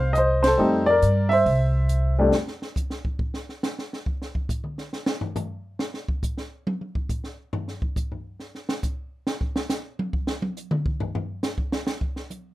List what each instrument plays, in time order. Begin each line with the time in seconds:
Already playing: upright bass C2, grand piano C5 F5
0.13 grand piano D#5, closed hi-hat
0.18 grand piano C5
0.43 grand piano C5, snare, ride
0.47 grand piano A4
0.57 upright bass F2, grand piano G3 A3 C4 D#4
0.86 grand piano A#4 D5
1.02 upright bass G2, closed hi-hat
1.29 grand piano C5 E5, open hi-hat
1.46 upright bass C2, kick, open hi-hat
1.89 closed hi-hat
2.19 grand piano F2 G3 A3 C4 D4
2.32 snare
2.48 snare
2.62 snare
2.76 kick, hi-hat pedal
2.90 snare
3.05 kick
3.19 kick
3.34 snare
3.49 snare
3.63 snare, hi-hat pedal
3.79 snare
3.93 snare
4.06 kick
4.22 snare
4.35 kick
4.49 kick, hi-hat pedal
4.64 mid tom
4.78 snare
4.93 snare
5.06 snare
5.21 floor tom
5.36 floor tom, hi-hat pedal
5.79 snare
5.94 snare
6.08 kick
6.23 kick, hi-hat pedal
6.38 snare
6.67 high tom
6.81 high tom
6.95 kick
7.09 kick, hi-hat pedal
7.24 snare
7.53 floor tom
7.68 snare
7.82 kick
7.96 kick, hi-hat pedal
8.12 floor tom
8.40 snare
8.55 snare
8.69 snare
8.83 kick, hi-hat pedal
9.27 snare
9.41 kick
9.56 snare
9.70 snare, hi-hat pedal
9.99 high tom
10.13 kick
10.27 snare
10.42 high tom
10.57 hi-hat pedal
10.71 mid tom
10.86 kick
11.00 floor tom
11.15 floor tom
11.43 snare, hi-hat pedal
11.58 kick
11.72 snare
11.87 snare
12.01 kick
12.16 snare
12.30 hi-hat pedal, high tom